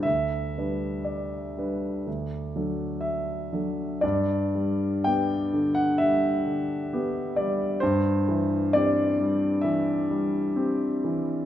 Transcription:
X:1
M:4/4
L:1/16
Q:1/4=64
K:G
V:1 name="Grand piano"
e4 d8 e4 | d4 g3 f e6 d2 | c4 d4 e4 z4 |]
V:2 name="Grand piano" clef=bass
D,,2 [G,DB]4 [G,DB]2 D,,2 [F,DA]4 [F,DA]2 | G,,2 G,2 [B,G]2 D,2 G,2 D,2 [B,G]2 G,2 | G,,2 E,2 [CG]2 G,2 E,2 G,2 [CG]2 E,2 |]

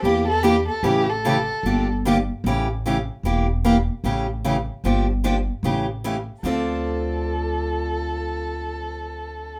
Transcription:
X:1
M:4/4
L:1/8
Q:"Swing" 1/4=150
K:Dm
V:1 name="Violin"
G A G A G A3- | A z6 z | z8 | z8 |
A8- | A8 |]
V:2 name="Steel-string acoustic guitar"
[E,B,DG] z [E,B,DG] z [^C,E,A,^CG] z [C,E,A,CG] z | [D,F,B,DG] z [D,F,B,DG] z [^C,E,A,^CG] z [C,E,A,CG] z | [E,B,DG] z [E,B,DG] z [^C,E,A,^CG] z [C,E,A,CG] z | [D,F,B,DG] z [D,F,B,DG] z [^C,E,A,^CG] z [C,E,A,CG] z |
[D,F,CDA]8- | [D,F,CDA]8 |]
V:3 name="Upright bass" clef=bass
E,,4 A,,,4 | G,,,4 A,,,4 | E,,,4 A,,,4 | G,,,4 A,,,4 |
D,,8- | D,,8 |]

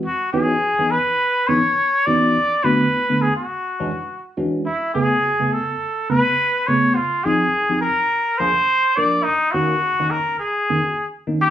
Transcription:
X:1
M:4/4
L:1/16
Q:"Swing 16ths" 1/4=104
K:C#dor
V:1 name="Muted trumpet"
F2 G4 B4 c4 =d2- | =d2 B4 G F6- F z2 | E2 G4 =A4 B4 c2 | =F2 _A4 ^A4 ^B4 =d2 |
D2 F4 A2 G4- G z2 =G |]
V:2 name="Tine electric piano"
z2 [E,B,CDF] z [DF] [E,B,CDG] z [DG] z2 [E,B,CDG] [DG] z2 [E,B,CDF]2 | z2 [=D,=A,B,F] z B, [D,A,B,=D] z [B,F] z2 [E,G,CDF] [DE] z2 [E,G,CDF]2 | z2 [C,=A,B,G] z [B,F] [C,A,B,G] z [B,G] z2 [C,A,B,B] z3 [C,A,B,G]2 | z2 [=F,=C_E_A] z [E^A] [F,CE=G] z [E_A] z2 [^E,^A,=D^G] [DG] z2 [E,A,D^A]2 |
z2 [D,A,CF] z [CG] [D,A,CD] z [CD] z2 [D,A,CG] z3 [D,A,CD]2 |]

